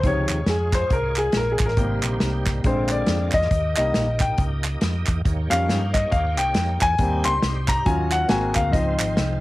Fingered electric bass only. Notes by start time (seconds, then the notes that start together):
0.04 C#2
0.29 D#2
0.46 F2
0.91 C2
1.34 A#1
1.60 A1
1.77 G#1
2.04 A#1
2.22 C2
2.64 A#1
3.08 F2
3.34 E2
3.51 D#2
3.78 C2
3.96 A#1
4.38 C#2
4.82 F2
5.08 E2
5.26 D#2
5.51 F2
5.68 G2
6.12 D#2
6.38 C2
6.56 F2
6.82 E2
6.99 D#2
7.26 C#2
7.43 C2
7.86 D#2
8.30 G#1
8.56 D2
8.73 C#2
9.00 G#1
9.18 C2